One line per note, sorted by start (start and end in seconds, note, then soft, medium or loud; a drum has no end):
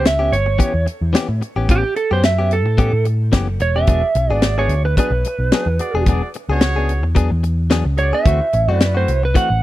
0.00 0.29 C#2 medium
0.05 0.32 E5 medium
0.05 muted clean electric guitar stroke soft
0.05 snare loud
0.05 closed hi-hat medium
0.19 0.36 B3 soft
0.19 0.35 C#4 soft
0.19 0.35 G4 soft
0.32 0.57 G1 medium
0.32 0.85 C#5 medium
0.32 closed hi-hat medium
0.46 muted clean electric guitar stroke soft
0.59 0.74 E3 medium
0.59 0.74 B3 medium
0.59 0.73 C#4 medium
0.59 0.73 G4 medium
0.59 kick medium
0.59 closed hi-hat medium
0.74 0.86 E2 medium
0.74 muted clean electric guitar stroke soft
0.86 muted clean electric guitar stroke soft
0.86 closed hi-hat medium
1.01 1.13 E2 medium
1.13 1.28 E3 medium
1.13 1.29 B3 medium
1.13 1.28 C#4 medium
1.13 1.28 G4 medium
1.13 snare loud
1.13 closed hi-hat medium
1.29 1.40 A2 medium
1.29 muted clean electric guitar stroke soft
1.41 muted clean electric guitar stroke soft
1.41 closed hi-hat medium
1.56 1.82 A1 medium
1.56 1.68 B3 soft
1.56 1.69 C#4 soft
1.56 1.69 G4 medium
1.69 1.84 E3 medium
1.69 1.84 B3 medium
1.69 1.83 C#4 medium
1.69 1.83 G4 medium
1.69 1.96 G4 loud
1.69 kick loud
1.69 closed hi-hat medium
1.96 2.11 A4 medium
1.96 muted clean electric guitar stroke soft
1.96 closed hi-hat medium
2.11 2.65 F#2 medium
2.11 2.23 B3 soft
2.11 2.24 C#4 soft
2.11 2.23 G4 medium
2.11 2.24 C5 medium
2.23 2.51 E5 medium
2.23 muted clean electric guitar stroke soft
2.23 snare loud
2.23 closed hi-hat medium
2.39 2.55 B3 soft
2.39 2.54 C#4 soft
2.39 2.54 G4 medium
2.51 3.05 A4 loud
2.51 closed hi-hat medium
2.65 2.91 A2 medium
2.65 muted clean electric guitar stroke soft
2.78 2.93 E3 medium
2.78 2.93 B3 medium
2.78 2.93 C#4 medium
2.78 2.92 G4 medium
2.78 kick medium
2.78 closed hi-hat medium
2.93 3.30 A2 medium
2.93 muted clean electric guitar stroke soft
3.05 muted clean electric guitar stroke soft
3.05 closed hi-hat medium
3.32 3.57 F#1 medium
3.32 3.47 E3 medium
3.32 3.48 B3 medium
3.32 3.48 C#4 medium
3.32 3.47 G4 medium
3.32 kick medium
3.32 snare loud
3.32 closed hi-hat medium
3.49 muted clean electric guitar stroke soft
3.60 3.85 E1 medium
3.60 3.76 C#5 loud
3.60 muted clean electric guitar stroke soft
3.60 closed hi-hat medium
3.76 3.87 B3 soft
3.76 3.88 C#4 soft
3.76 3.88 G4 medium
3.76 4.33 E5 medium
3.86 4.02 E1 medium
3.86 4.03 F#3 medium
3.86 4.03 B3 medium
3.86 4.03 D4 medium
3.86 4.08 F#4 medium
3.86 4.09 G#4 medium
3.86 4.02 G#4 medium
3.86 4.10 D5 medium
3.86 kick loud
3.86 closed hi-hat medium
4.03 muted clean electric guitar stroke soft
4.15 4.29 B1 loud
4.15 muted clean electric guitar stroke soft
4.15 closed hi-hat medium
4.28 4.67 G#1 medium
4.28 4.43 D4 soft
4.28 4.84 F#4 medium
4.28 4.84 G#4 medium
4.28 4.43 G#4 medium
4.28 4.85 D5 medium
4.33 4.43 B3 soft
4.33 4.55 D5 medium
4.42 muted clean electric guitar stroke soft
4.42 snare loud
4.42 closed hi-hat medium
4.58 4.74 B3 soft
4.58 4.74 D4 soft
4.58 4.73 G#4 soft
4.58 4.85 C#5 medium
4.68 4.94 D2 medium
4.68 closed hi-hat medium
4.85 4.97 B4 medium
4.85 muted clean electric guitar stroke soft
4.97 5.13 F#3 medium
4.97 5.13 B3 medium
4.97 5.12 D4 medium
4.97 5.12 G#4 medium
4.97 6.03 B4 medium
4.97 kick medium
4.97 closed hi-hat medium
5.11 5.23 B1 loud
5.11 muted clean electric guitar stroke soft
5.24 muted clean electric guitar stroke soft
5.24 closed hi-hat medium
5.39 5.50 B1 medium
5.52 5.67 F#3 medium
5.52 5.68 B3 medium
5.52 5.68 D4 medium
5.52 5.67 G#4 medium
5.52 snare loud
5.52 closed hi-hat medium
5.66 5.78 E2 loud
5.66 muted clean electric guitar stroke soft
5.78 5.94 F#4 medium
5.78 5.94 G#4 medium
5.78 5.94 D5 medium
5.78 muted clean electric guitar stroke soft
5.78 closed hi-hat medium
5.94 6.20 E1 medium
5.94 6.07 B3 soft
5.94 6.08 D4 medium
5.94 6.07 G#4 medium
6.06 6.22 F#3 medium
6.06 6.22 B3 medium
6.06 6.23 D4 medium
6.06 6.28 F#4 medium
6.06 6.28 G#4 medium
6.06 6.22 G#4 medium
6.06 6.29 D5 medium
6.06 kick loud
6.06 closed hi-hat medium
6.23 muted clean electric guitar stroke soft
6.34 muted clean electric guitar stroke soft
6.34 closed hi-hat medium
6.49 7.04 C#2 medium
6.49 6.62 B3 soft
6.49 6.62 D4 medium
6.49 7.03 F#4 loud
6.49 7.04 G#4 medium
6.49 6.61 G#4 medium
6.49 7.05 C#5 loud
6.61 muted clean electric guitar stroke soft
6.61 snare loud
6.61 closed hi-hat medium
6.76 6.93 B3 soft
6.76 6.92 D4 soft
6.76 6.91 G#4 medium
6.89 closed hi-hat medium
7.03 7.29 E2 medium
7.03 muted clean electric guitar stroke medium
7.15 7.30 F#3 medium
7.15 7.31 B3 medium
7.15 7.31 D4 loud
7.15 7.30 G#4 loud
7.15 kick medium
7.15 closed hi-hat medium
7.32 7.82 E2 medium
7.32 muted clean electric guitar stroke soft
7.43 muted clean electric guitar stroke soft
7.43 closed hi-hat medium
7.70 7.85 F#3 medium
7.70 7.86 B3 medium
7.70 7.85 D4 medium
7.70 7.84 G#4 medium
7.70 snare loud
7.70 closed hi-hat medium
7.85 8.11 C#2 medium
7.97 8.12 F#4 medium
7.97 8.12 G#4 medium
7.97 8.13 C#5 medium
7.97 8.14 D5 medium
7.97 muted clean electric guitar stroke soft
7.97 closed hi-hat medium
8.13 8.26 B3 soft
8.13 8.26 D4 soft
8.13 8.25 G#4 medium
8.13 8.73 E5 loud
8.23 8.39 D2 medium
8.23 8.40 E3 medium
8.23 8.41 A3 medium
8.23 8.40 C4 medium
8.23 8.45 E4 medium
8.23 8.46 F#4 medium
8.23 8.40 F#4 medium
8.23 8.47 C5 medium
8.23 kick loud
8.23 closed hi-hat medium
8.41 muted clean electric guitar stroke soft
8.53 8.67 A1 loud
8.53 muted clean electric guitar stroke soft
8.53 closed hi-hat medium
8.68 9.05 F#2 loud
8.68 8.80 A3 soft
8.68 8.80 C4 soft
8.68 9.23 E4 medium
8.68 8.80 F#4 medium
8.68 9.23 F#4 medium
8.68 9.24 B4 medium
8.73 8.93 D5 loud
8.80 muted clean electric guitar stroke soft
8.80 snare loud
8.80 closed hi-hat medium
8.95 9.11 A3 soft
8.95 9.11 C4 soft
8.95 9.10 F#4 medium
8.95 9.22 C5 medium
9.08 9.33 C2 medium
9.08 closed hi-hat medium
9.23 9.36 B4 loud
9.23 muted clean electric guitar stroke soft
9.34 9.50 E3 medium
9.34 9.50 A3 medium
9.34 9.49 C4 medium
9.34 9.49 F#4 medium
9.34 9.63 F#5 medium
9.34 kick medium
9.34 closed hi-hat medium
9.50 9.62 A1 loud
9.50 muted clean electric guitar stroke soft